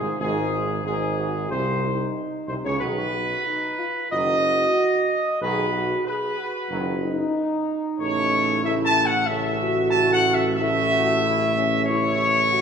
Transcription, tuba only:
0.19 G#1
0.84 G#1
1.50 C2
2.47 C2
2.64 C#2
2.80 B1
4.11 F#1
5.41 B1
6.70 F#1
8.00 A1

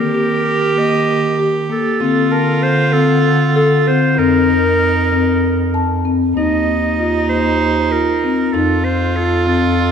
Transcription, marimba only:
0.14 G4
0.77 A#3
1.39 G4
1.69 A#3
2.00 C4
2.31 A5
2.94 C4
3.56 A4
3.88 C4
4.19 C4
4.50 A#4
5.13 C4
5.74 A5
6.05 C4
6.37 D#4
6.99 F4
7.30 A#3
7.92 F4
8.24 C4
8.54 D#4
9.16 F4
9.47 C4

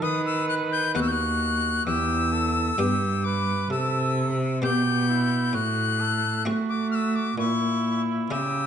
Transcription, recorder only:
0.02 D#6
0.26 E6
0.49 F#6
0.72 G6
0.94 F#6
1.02 E6
1.08 F#6 G6
1.86 E6
3.24 D6
3.71 E6
4.63 G6
5.55 F#6
6.69 D6
6.91 F6
6.95 E6
7.15 D6
7.38 C#6
8.31 E6

